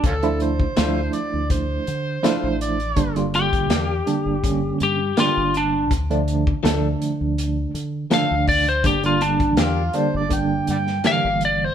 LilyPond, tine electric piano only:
\new Staff \with { instrumentName = "Tine electric piano" } { \time 4/4 \key d \minor \tempo 4 = 82 r16 <f a d' e'>8 r16 <f a d' e'>4. r8 <f a d' e'>8. r16 | <d g bes d'>16 <d g bes f'>4 r16 <d g bes d'>16 r16 <d g bes cis'>8. r16 <d g bes d'>4 | r16 <d f a d'>8 r16 <d f a d'>4. r8 <d f a d'>8. r16 | <d g bes d'>16 <d g bes d'>4 r16 <d g bes d'>16 r16 <d g bes d'>8. r16 <d e g bes>4 | }